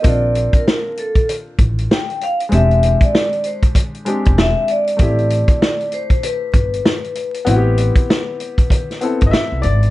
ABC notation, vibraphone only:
X:1
M:4/4
L:1/16
Q:"Swing 16ths" 1/4=97
K:Am
V:1 name="Vibraphone"
d3 _B3 A2 z4 g2 f2 | e3 d3 ^B2 z4 e2 d2- | d6 c2 B8- | B12 z4 |]